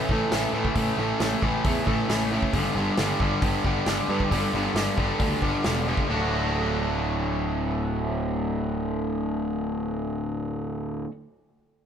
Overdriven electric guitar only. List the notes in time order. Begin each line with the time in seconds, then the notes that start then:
Already playing: A3
0.10 A2 E3 A3
0.32 A2 E3 A3
0.53 A2 E3 A3
0.76 A2 E3 A3
0.98 A2 E3 A3
1.19 A2 E3 A3
1.43 A2 E3 A3
1.65 A2 E3 A3
1.86 A2 E3 A3
2.09 A2 E3 A3
2.32 A2 E3 A3
2.54 G2 D3 G3
2.76 G2 D3 G3
2.98 G2 D3 G3
3.21 G2 D3 G3
3.42 G2 D3 G3
3.65 G2 D3 G3
3.87 G2 D3 G3
4.09 G2 D3 G3
4.31 G2 D3 G3
4.54 G2 D3 G3
4.76 G2 D3 G3
4.98 G2 D3 G3
5.20 G2 D3 G3
5.43 G2 D3 G3
5.65 G2 D3 G3
5.87 G2 D3 G3
6.08 D2 A2 D3 A3
6.12 F#4